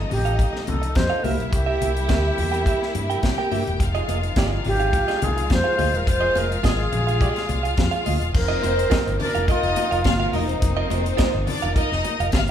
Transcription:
Already playing: C3 F3 A3 D#4 D#5
0.09 A1 G4, muted clean electric guitar stroke, open hi-hat, low conga
0.25 F4 A4 F5, closed hi-hat
0.38 muted clean electric guitar stroke, kick, closed hi-hat
0.53 muted clean electric guitar stroke, snare
0.67 C2 A4, closed hi-hat, muted conga, low conga
0.82 muted clean electric guitar stroke, closed hi-hat
0.95 F2 C5, muted clean electric guitar stroke, kick, snare, closed hi-hat, high conga
1.10 F4 A4 F5
1.23 C2 G3 A#3 E4 G4 A#4 E5, open hi-hat, high conga
1.39 B1, muted clean electric guitar stroke, closed hi-hat
1.51 C2 G4, muted clean electric guitar stroke, kick, closed hi-hat
1.66 G4 A#4 E5
1.81 C2 G4 A#4 E5, closed hi-hat, muted conga
1.96 muted clean electric guitar stroke, closed hi-hat
2.08 D2 G4 A#4 E5, kick, snare, closed hi-hat, high conga
2.24 muted clean electric guitar stroke
2.38 E2, muted clean electric guitar stroke, open hi-hat, low conga
2.52 G4 A#4 G5, closed hi-hat
2.66 G4 A#4 E5, kick, closed hi-hat
2.81 muted clean electric guitar stroke, snare
2.95 G2, muted clean electric guitar stroke, closed hi-hat, muted conga
3.10 G4 A#4 G5, closed hi-hat
3.23 C3 G4 G5, muted clean electric guitar stroke, kick, snare, closed hi-hat, high conga
3.38 G4 A#4 G5
3.50 G2 G4 A#4 E5, open hi-hat, high conga
3.66 E1, muted clean electric guitar stroke, closed hi-hat
3.79 F1 F3 G#3 D#4 F4 F5, muted clean electric guitar stroke, kick, closed hi-hat, muted conga
3.95 F4 G#4 D#5, closed hi-hat
4.08 F1 F4 G#4 D#5, closed hi-hat, muted conga
4.23 muted clean electric guitar stroke, closed hi-hat
4.36 G1 F4 G#4 D#5, kick, snare, closed hi-hat, high conga
4.52 muted clean electric guitar stroke
4.65 G#1 G4, muted clean electric guitar stroke, open hi-hat, low conga
4.80 F4 G#4 F5, closed hi-hat
4.93 muted clean electric guitar stroke, kick, closed hi-hat
5.08 F4 G#4 D#5, snare, closed hi-hat
5.21 C2 G#4, muted clean electric guitar stroke, closed hi-hat, muted conga, low conga
5.37 muted clean electric guitar stroke, closed hi-hat
5.50 F2 C5, muted clean electric guitar stroke, kick, snare, closed hi-hat, high conga
5.64 F4 G#4 F5
5.77 D2 F4 G#4 D#5, open hi-hat, high conga
5.93 E1 A#4, muted clean electric guitar stroke, closed hi-hat
6.06 F1 F4 C5, muted clean electric guitar stroke, kick, closed hi-hat
6.21 F4 G#4 D#5
6.35 F1 F4 G#4 A#4 D#5, closed hi-hat, muted conga
6.50 muted clean electric guitar stroke, closed hi-hat
6.63 G#1 F4 G#4 D#5, kick, snare, closed hi-hat, high conga
6.78 muted clean electric guitar stroke
6.92 A#1, muted clean electric guitar stroke, closed hi-hat, low conga
7.07 F4 G#4 F5, closed hi-hat
7.20 F4 G#4 D#5, kick, closed hi-hat
7.35 muted clean electric guitar stroke, snare, closed hi-hat
7.48 C2, muted clean electric guitar stroke, closed hi-hat, muted conga
7.63 F4 G#4 F5, closed hi-hat
7.77 F2, muted clean electric guitar stroke, kick, snare, closed hi-hat, high conga
7.91 F4 G#4 F5, closed hi-hat
8.05 D2 F4 G#4 D#5, open hi-hat, high conga
8.20 E1, muted clean electric guitar stroke, closed hi-hat
8.34 F1 C3 F3 A#3 C4 D#4 A#4 C5, muted clean electric guitar stroke, kick, crash, muted conga
8.48 F4 A#4 D#5
8.61 F1 F4 A#4 D#5, closed hi-hat, muted conga
8.77 muted clean electric guitar stroke, closed hi-hat
8.90 F4 A#4 D#5, kick, snare, closed hi-hat, high conga
9.05 G1, muted clean electric guitar stroke, closed hi-hat
9.19 D4 A#4 D5, muted clean electric guitar stroke, open hi-hat, low conga
9.35 F1 F4 A#4 F5, closed hi-hat
9.47 D#4 F4 A#4 D#5, kick, closed hi-hat
9.51 F4
9.63 F1, muted clean electric guitar stroke, closed hi-hat
9.76 muted clean electric guitar stroke, closed hi-hat, muted conga
9.91 F1 F4 A#4 F5, closed hi-hat
10.04 G1 F4 F5, muted clean electric guitar stroke, kick, snare, closed hi-hat, high conga
10.19 F4 A#4 F5
10.32 E1 D#4 F4 A#4 D#5, open hi-hat, high conga
10.47 C4 C5, muted clean electric guitar stroke, closed hi-hat
10.60 F1 C4 C5, muted clean electric guitar stroke, kick, closed hi-hat, muted conga
10.77 F4 A#4 D#5
10.89 F1 F4 A#4 D#5, closed hi-hat, muted conga
11.05 muted clean electric guitar stroke, closed hi-hat
11.17 F4 A#4 D#5, kick, snare, closed hi-hat, high conga
11.34 G1, muted clean electric guitar stroke
11.47 D4 D5, muted clean electric guitar stroke, open hi-hat, low conga
11.62 F1 F4 A#4 F5, closed hi-hat
11.75 D#4 F4 A#4 D#5, kick, closed hi-hat
11.91 F1, muted clean electric guitar stroke, snare
12.04 muted clean electric guitar stroke, closed hi-hat, muted conga
12.20 F1 F4 A#4 F5, closed hi-hat
12.32 G1 F4 F5, muted clean electric guitar stroke, kick, snare, closed hi-hat, high conga
12.47 F4 F5, closed hi-hat

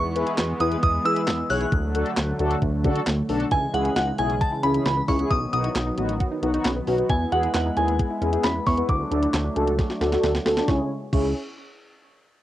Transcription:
Already playing: E2 E3 G#3 B3 C#6
0.16 E4 G#4 B4, closed hi-hat
0.27 closed hi-hat
0.38 E2, snare, clap, closed hi-hat
0.60 E2 E4 G#4 B4 D#6, closed hi-hat
0.72 closed hi-hat
0.83 E2 D#6, kick, closed hi-hat
1.05 E3 E4 G#4 B4 E6, closed hi-hat
1.16 closed hi-hat
1.27 E2, snare, clap, closed hi-hat
1.50 B1 E4 G#4 C#5 F#6, open hi-hat
1.61 closed hi-hat
1.72 D2 D3 F#3 A3, kick, closed hi-hat
1.95 D4 F#4 A4, closed hi-hat
2.06 closed hi-hat
2.17 D2, snare, clap, closed hi-hat
2.39 D2 D4 F#4 A4, closed hi-hat
2.51 closed hi-hat
2.62 D2, kick, closed hi-hat
2.84 D3 D4 F#4 A4, kick, closed hi-hat
2.96 closed hi-hat
3.07 D2, snare, clap, closed hi-hat
3.29 B1 D4 F#4 A4, open hi-hat
3.40 closed hi-hat
3.51 C#2 C#3 E3 G#3 E4 G#5, kick, closed hi-hat
3.74 C#2 C#4 E4 F#4 G#4 F#5, closed hi-hat
3.85 E4, closed hi-hat
3.96 C#2 D#4 F#5, snare, closed hi-hat
4.07 D#4
4.18 B1 C#4 E4 G#4 G#5, closed hi-hat
4.30 closed hi-hat
4.41 G#4 A5, kick, closed hi-hat
4.52 E4
4.63 C#2 C#4 E4 G#4 B5, closed hi-hat
4.74 C#4 E4 G#4, closed hi-hat
4.86 C#2 C#4 B5, snare, closed hi-hat
4.97 B3
5.08 C#2 C#4 E4 G#4 C#6, kick, open hi-hat
5.19 B3 C#4 E4 G#4, closed hi-hat
5.30 B1 D#3 F#3 B3 D#4 D#6, kick, closed hi-hat
5.53 B1 B3 D#4 F#4 D#6, closed hi-hat
5.64 E4, closed hi-hat
5.75 B1 D#4, snare, clap, closed hi-hat
5.87 D#4
5.98 A1 B3 D#4 F#4, closed hi-hat
6.09 closed hi-hat
6.20 F#4, kick, closed hi-hat
6.31 D#4
6.42 B1 B3 D#4 F#4, closed hi-hat
6.54 B3 D#4 F#4, closed hi-hat
6.65 B1 C#4, snare, clap, closed hi-hat
6.76 B3
6.87 B1 B3 C#4 D#4 F#4, open hi-hat
6.98 B3 D#4 F#4, closed hi-hat
7.09 E2 G#3 E4 G#5, kick, closed hi-hat
7.32 E2 B3 E4 F#4 G#4 F#5, closed hi-hat
7.43 E4, closed hi-hat
7.54 E2 D#4 F#5, snare, clap, closed hi-hat
7.66 D#4
7.77 D#2 B3 C#4 E4 G#4 G#5, closed hi-hat
7.88 closed hi-hat
7.99 G#4, kick, closed hi-hat
8.11 E4
8.22 E2 B3 C#4 E4 G#4, closed hi-hat
8.33 B3 E4 G#4, closed hi-hat
8.44 E2 C#4 B5, snare, clap, closed hi-hat
8.55 B3
8.66 E2 B3 C#4 E4 G#4 C#6, kick, open hi-hat
8.77 B3 E4 B4, closed hi-hat
8.89 D2 F#3 A3 D4 E4 D6, kick, closed hi-hat
9.11 D2 D4 F#4 A4, closed hi-hat
9.22 E4, closed hi-hat
9.34 D2 D4, snare, clap, closed hi-hat
9.45 D4
9.56 C#2 C#4 D4 F#4 A4, closed hi-hat
9.67 closed hi-hat
9.78 G#4, kick, snare, closed hi-hat
9.89 F#4, snare
10.01 D2 D4 F#4 A4, snare, closed hi-hat
10.12 D4 F#4 A4, snare, closed hi-hat
10.23 D2 D4, snare, closed hi-hat
10.34 B3, snare
10.45 D2 C#4 D4 F#4 A4, snare, open hi-hat
10.57 B3 D4 F#4 A4, snare, closed hi-hat
10.68 C#2 C#3 G#3 C#4 E4 C#5 G#5 C#6, kick, snare
11.13 C#2 C#4 E4 G#4 C#6, kick, crash

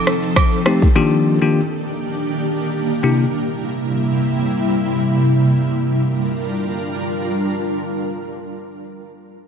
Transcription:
Already playing: F3 C4 D#4 A4
0.06 cross-stick, shaker
0.23 shaker
0.36 kick, cross-stick, high agogo, shaker
0.53 shaker
0.66 A3 C4 D#4 G4, cross-stick
0.82 kick, shaker
0.95 D#3 A#3 D4 F4 G4
1.42 D#3 A#3 D4 F4 G4
3.03 C3 G3 A#3 D4 E4 G4
5.71 G3 D4 F4 A#4

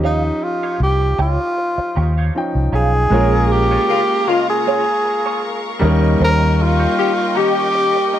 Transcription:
Already playing: D#2 F3 C#4 D#4 G4
0.04 D#4 G4 C#5 F5
0.42 F4, muted clean electric guitar stroke
0.63 D#4 G4 C#5 F5
0.80 C2 G4, muted clean electric guitar stroke
1.01 muted clean electric guitar stroke
1.18 C#2 D#4 F4 G4 C#5 G5
1.40 muted clean electric guitar stroke
1.58 muted clean electric guitar stroke
1.78 muted fingered electric bass stroke, muted clean electric guitar stroke
1.96 D#2 D#4 G4 C#5 G5
2.17 D#4 G4 C#5 F5
2.35 F3 C#4 D#4 G5, muted clean electric guitar stroke
2.55 C2
2.72 B1 D#4 G4 G#4 C#5 F5
2.94 muted clean electric guitar stroke
3.10 A#1 G#3 A#3 C#4 F4 G#4 A#4 C#5 F5 A#5 C#6
3.15 A#4
3.33 muted clean electric guitar stroke
3.50 G4, muted clean electric guitar stroke
3.71 A#3 F4 G#4 C#5
3.89 C#3 A#3 F4, muted clean electric guitar stroke
4.10 muted clean electric guitar stroke
4.28 C#3 A#3 F4 G#4 D#5
4.49 G#4, muted clean electric guitar stroke
4.67 A#3 F4 G#4 C#5
5.05 muted clean electric guitar stroke
5.26 A#3 F4 G#4 C#5
5.44 muted clean electric guitar stroke
5.79 D#2 G3 A#3 C#4 D#4 G4 C#5 D#5 G5
5.83 D#4 A#4
6.02 muted clean electric guitar stroke
6.20 D#2 A#3 D#4 G4 C#5
6.24 A#4
6.59 F4, muted clean electric guitar stroke
6.79 A#3 D#4 G4 C#5
6.98 D#3 C#4 G4
7.18 muted clean electric guitar stroke
7.35 D#3 A#3 C#4 D#4 G4 D#5
7.57 muted clean electric guitar stroke
7.74 muted clean electric guitar stroke
7.96 muted clean electric guitar stroke
8.13 A#3 D#4 G4 D#5

